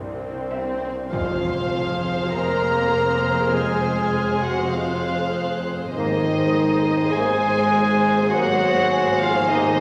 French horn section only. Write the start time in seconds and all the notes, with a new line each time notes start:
1.11 F3
2.33 A#3
3.53 G#3
4.43 F#4
4.74 F3
5.93 D#3
7.13 G#3
8.33 F#3
9.22 F3
9.52 D#3